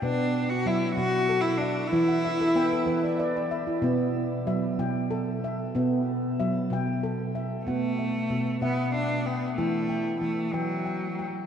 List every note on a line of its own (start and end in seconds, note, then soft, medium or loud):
0.00 0.50 B2 medium
0.00 0.67 B3 medium
0.00 0.51 D4 medium
0.00 0.35 G5 medium
0.49 0.68 F#4 medium
0.66 0.90 F#3 medium
0.66 0.94 E4 medium
0.66 1.31 E5 medium
0.95 1.69 B2 medium
0.95 1.42 F#4 loud
0.95 1.94 F#5 medium
1.29 1.93 A4 medium
1.41 1.59 E4 medium
1.58 1.89 D4 medium
1.58 2.24 E5 medium
1.88 3.18 E4 medium
1.92 2.41 E3 loud
1.92 2.57 E4 medium
2.08 2.38 F#5 medium
2.25 2.55 E5 medium
2.41 2.71 A4 medium
2.56 2.80 B3 medium
2.56 2.86 B4 medium
2.56 3.20 G5 medium
2.72 3.02 A4 medium
2.86 3.59 E3 medium
2.86 3.18 B4 medium
3.04 3.18 D5 medium
3.19 3.50 B4 medium
3.19 3.35 D5 medium
3.36 3.66 D5 medium
3.51 3.81 E5 medium
3.67 3.97 E4 medium
3.82 4.31 B2 loud
3.82 4.48 B3 medium
4.47 4.71 F#3 medium
4.47 5.11 E5 medium
4.79 5.51 B2 medium
4.79 5.75 G5 medium
5.11 5.75 A4 medium
5.44 6.07 E5 medium
5.75 6.23 B2 medium
5.75 6.39 B3 medium
6.40 6.64 F#3 medium
6.40 7.03 E5 medium
6.70 7.42 B2 medium
6.70 7.68 G5 medium
7.03 7.67 A4 medium
7.35 7.98 E5 medium
7.66 8.15 B2 medium
7.66 8.58 A3 medium
7.66 8.31 B3 medium
7.66 8.61 F#5 medium
7.99 8.61 E5 soft
8.30 8.54 B2 medium
8.61 9.34 B2 medium
8.61 8.93 B3 medium
8.61 8.93 E5 medium
8.61 9.58 F#5 medium
8.94 9.28 D4 medium
8.94 9.90 E5 medium
9.26 9.56 B3 medium
9.26 9.57 G5 medium
9.56 10.06 E3 medium
9.56 10.18 A3 medium
9.56 10.22 E4 medium
9.56 9.88 G5 medium
9.90 10.53 G5 medium
10.21 10.46 E3 medium
10.21 10.55 A3 medium
10.53 11.26 E3 medium
10.53 11.26 F#3 medium
10.53 10.56 G5 medium
10.86 11.18 G5 medium
11.19 11.46 G5 medium